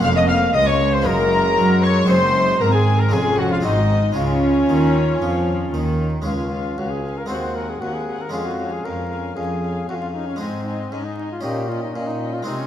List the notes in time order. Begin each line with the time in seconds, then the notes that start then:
Already playing: A#3
0.00 F1 F2 G#3 C#4 F4 F5 F6
0.04 F5
0.16 D#5 D#6
0.28 F5 F6
0.54 C#2 G#3 D#5 D#6
0.66 C#5 C#6
0.92 C5 C6
1.01 A#3 C#4 D#4
1.06 F#1 F#2 A#4 A#5
1.57 F#2 F#3
1.83 C#5 C#6
2.05 G#3 C4 D#4 C5
2.09 F#1 F#2 C5 C6
2.60 G#1 G#2 C4 A#4 A#5
2.73 G#4 G#5
2.99 A#4 A#5
3.09 F2 G#3 C#4 F4 G#4 G#5
3.13 F1 F2 C#4
3.39 F#4 F#5
3.51 F4 F5
3.60 G#1 G#3 C4 D#4 F#4 D#5
3.65 G#2 D#4
4.12 C#3 G#3 C#4 F4
4.17 C#2 C#3 C#4 F4 C#5
4.69 D#2 D#3
5.22 F2 F3
5.74 D#2 D#3
6.22 G#3 C#4 F4
6.26 C#2 C#4 F5 G#5
6.52 C#4 F5 G#5
6.78 C#2 C#4 F#4 F5 G#5
6.90 G#4
7.04 C#4 F5 G#5
7.18 A#4
7.26 D#2 G#3 C4 F#4 C5 F#5
7.30 D#2 C4 G#5
7.55 C4 A#4 F#5 G#5
7.70 G#4
7.81 D#2 C4 F#4 F#5 G#5
7.94 G#4
8.08 C4 F#5 G#5
8.22 A#4
8.29 F2 G#3 C#4 F4 G#4
8.34 F2 C#4 F5 G#5
8.45 F#4
8.59 C#4 F5 G#5
8.73 G#4
8.85 F2 C#4 A#4 F5 G#5
9.11 C#4 F5 G#5
9.36 F2 C#4 G#4 F5 G#5
9.62 C#4 F5 G#5
9.88 F2 C#4 F#4 F5 G#5
10.02 F4
10.14 C#4 D#4 F5 G#5
10.28 C#4
10.36 G#3 D#4
10.40 G#2 C4 D#4 D#5 G#5
10.66 D#4 D#5 G#5
10.92 G#2 C#4 D#4 D#5 G#5
11.04 D#4
11.18 D#4 D#5 G#5
11.32 F4
11.41 A#2 C#4 D#4 G4 D#5 G5
11.68 C#4 F4 D#5 G5
11.82 D#4
11.94 A#2 C#4 D#5 G5
12.07 D#4
12.20 C#4 D#5 G5
12.34 F4
12.43 G#3 C4 D#4
12.47 C3 C4 D#5 G#5
12.58 C#4